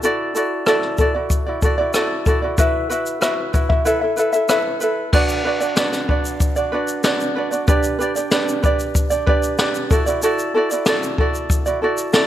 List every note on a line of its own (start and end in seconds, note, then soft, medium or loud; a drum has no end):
0.03 0.34 E4 medium
0.03 0.35 F#4 medium
0.03 0.33 A4 medium
0.03 0.36 D5 medium
0.03 shaker medium
0.35 0.66 E4 medium
0.35 0.67 F#4 medium
0.35 0.65 A4 medium
0.35 0.67 D5 medium
0.35 shaker medium
0.66 0.98 E4 medium
0.66 0.99 F#4 medium
0.66 0.97 A4 medium
0.66 0.99 D5 medium
0.66 cross-stick loud
0.66 shaker medium
0.82 cross-stick soft
0.98 1.15 E4 medium
0.98 1.15 F#4 medium
0.98 1.14 A4 medium
0.98 1.13 D5 medium
0.98 kick medium
0.98 shaker soft
1.15 1.48 E4 soft
1.15 1.47 F#4 soft
1.15 1.45 D5 soft
1.30 kick medium
1.30 shaker medium
1.46 1.62 E4 soft
1.46 1.63 F#4 soft
1.46 1.62 D5 medium
1.62 1.79 E4 medium
1.62 1.78 F#4 medium
1.62 1.77 A4 medium
1.62 1.77 D5 medium
1.62 kick medium
1.62 shaker soft
1.78 1.94 E4 medium
1.78 1.94 F#4 medium
1.78 1.94 D5 medium
1.94 2.26 E4 medium
1.94 2.27 F#4 medium
1.94 2.25 A4 medium
1.94 2.27 D5 medium
1.94 cross-stick medium
1.94 shaker medium
2.26 2.43 E4 medium
2.26 2.43 F#4 medium
2.26 2.42 A4 medium
2.26 2.41 D5 medium
2.26 kick medium
2.26 shaker soft
2.42 2.58 E4 soft
2.42 2.58 F#4 soft
2.42 2.58 D5 soft
2.58 2.90 E4 medium
2.58 2.89 F#4 medium
2.58 2.88 B4 medium
2.58 2.91 E5 medium
2.58 kick medium
2.58 shaker medium
2.90 3.21 E4 medium
2.90 3.20 F#4 medium
2.90 3.20 B4 medium
2.90 3.22 E5 medium
2.90 shaker soft
3.06 shaker soft
3.21 3.53 E4 medium
3.21 3.53 F#4 medium
3.21 3.52 B4 medium
3.21 3.54 E5 medium
3.21 cross-stick medium
3.21 shaker medium
3.53 3.69 E4 medium
3.53 3.70 F#4 medium
3.53 3.69 B4 medium
3.53 3.68 E5 medium
3.53 kick medium
3.53 shaker soft
3.69 3.84 E4 soft
3.69 3.85 F#4 soft
3.69 3.85 E5 soft
3.69 kick medium
3.85 4.02 E4 medium
3.85 4.02 A4 medium
3.85 4.01 B4 medium
3.85 4.00 E5 medium
3.85 shaker medium
4.01 4.16 E4 soft
4.01 4.17 A4 soft
4.01 4.17 E5 soft
4.17 4.33 E4 medium
4.17 4.33 A4 medium
4.17 4.33 B4 medium
4.17 4.31 E5 medium
4.17 shaker soft
4.33 4.48 E4 soft
4.33 4.49 A4 medium
4.33 4.49 E5 medium
4.33 shaker soft
4.49 4.81 E4 medium
4.49 4.82 A4 medium
4.49 4.79 B4 medium
4.49 4.82 E5 medium
4.49 cross-stick loud
4.49 shaker medium
4.81 5.13 E4 medium
4.81 5.14 A4 medium
4.81 5.11 B4 medium
4.81 5.14 E5 medium
4.81 shaker soft
5.12 5.44 D4 medium
5.12 5.45 F#4 medium
5.12 5.43 B4 medium
5.12 5.46 D5 medium
5.12 kick loud
5.12 crash medium
5.29 shaker medium
5.44 5.61 D4 medium
5.44 5.61 F#4 medium
5.44 5.61 B4 medium
5.44 5.59 D5 medium
5.60 5.76 D4 soft
5.60 5.76 F#4 soft
5.60 5.77 D5 soft
5.60 shaker soft
5.76 6.07 D4 medium
5.76 6.08 F#4 medium
5.76 6.07 B4 medium
5.76 6.09 D5 medium
5.76 snare loud
5.76 shaker medium
5.92 snare soft
5.92 shaker soft
6.08 6.56 D4 medium
6.08 6.57 F#4 medium
6.08 6.56 B4 medium
6.08 6.55 D5 medium
6.08 kick medium
6.25 shaker soft
6.40 kick medium
6.40 shaker medium
6.56 6.72 D4 soft
6.56 6.73 F#4 soft
6.56 6.72 D5 medium
6.56 shaker soft
6.72 7.03 D4 medium
6.72 7.04 F#4 medium
6.72 7.03 B4 medium
6.72 7.05 D5 medium
6.88 shaker soft
7.04 7.35 D4 medium
7.04 7.37 F#4 medium
7.04 7.34 B4 medium
7.04 7.37 D5 medium
7.04 snare loud
7.04 shaker medium
7.20 shaker soft
7.36 7.52 D4 medium
7.36 7.51 F#4 medium
7.36 7.52 B4 medium
7.36 7.50 D5 medium
7.51 7.67 D4 soft
7.51 7.68 F#4 medium
7.51 7.68 D5 medium
7.51 shaker medium
7.67 7.99 D4 medium
7.67 8.00 G4 medium
7.67 7.97 B4 medium
7.67 7.98 D5 loud
7.67 kick loud
7.67 shaker medium
7.83 shaker medium
7.99 8.16 D4 medium
7.99 8.16 G4 medium
7.99 8.15 B4 medium
7.99 8.14 D5 medium
7.99 shaker medium
8.16 8.31 D4 soft
8.16 8.32 G4 medium
8.16 8.32 D5 medium
8.16 shaker soft
8.31 8.63 D4 medium
8.31 8.63 G4 medium
8.31 8.61 B4 medium
8.31 8.64 D5 medium
8.31 snare loud
8.31 shaker medium
8.48 shaker soft
8.63 9.12 D4 medium
8.63 9.10 G4 medium
8.63 9.11 B4 medium
8.63 9.09 D5 medium
8.63 kick medium
8.63 shaker soft
8.80 shaker soft
8.95 kick medium
8.95 shaker medium
9.10 9.27 D4 soft
9.10 9.27 G4 soft
9.10 9.27 D5 medium
9.10 shaker medium
9.26 9.58 D4 medium
9.26 9.59 G4 medium
9.26 9.57 B4 medium
9.26 9.59 D5 medium
9.26 kick medium
9.43 shaker soft
9.58 9.91 D4 medium
9.58 9.91 G4 medium
9.58 9.91 B4 medium
9.58 9.90 D5 medium
9.58 snare loud
9.58 shaker medium
9.75 shaker soft
9.90 10.07 E4 medium
9.90 10.07 F#4 medium
9.90 10.06 A4 medium
9.90 10.05 D5 medium
9.90 kick loud
9.90 shaker soft
10.06 10.22 E4 medium
10.06 10.23 F#4 medium
10.06 10.22 D5 medium
10.06 shaker soft
10.22 10.54 E4 medium
10.22 10.55 F#4 medium
10.22 10.53 A4 medium
10.22 10.56 D5 medium
10.22 shaker medium
10.39 shaker medium
10.54 10.71 E4 medium
10.54 10.71 F#4 medium
10.54 10.70 A4 medium
10.54 10.70 D5 medium
10.71 10.86 E4 soft
10.71 10.87 F#4 soft
10.71 10.86 D5 medium
10.71 shaker soft
10.86 11.18 E4 medium
10.86 11.19 F#4 medium
10.86 11.17 A4 medium
10.86 11.19 D5 medium
10.86 snare loud
10.86 shaker medium
11.03 shaker medium
11.18 11.67 E4 medium
11.18 11.66 F#4 medium
11.18 11.65 A4 medium
11.18 11.65 D5 medium
11.18 kick medium
11.34 shaker medium
11.50 kick medium
11.50 shaker medium
11.66 11.82 E4 soft
11.66 11.83 F#4 soft
11.66 11.81 D5 medium
11.66 shaker medium
11.82 12.12 E4 medium
11.82 12.13 F#4 medium
11.82 12.12 A4 medium
11.82 12.14 D5 medium
11.98 shaker soft
12.13 12.27 E4 medium
12.13 12.27 F#4 medium
12.13 12.27 A4 medium
12.13 12.27 D5 medium
12.13 snare loud
12.13 shaker medium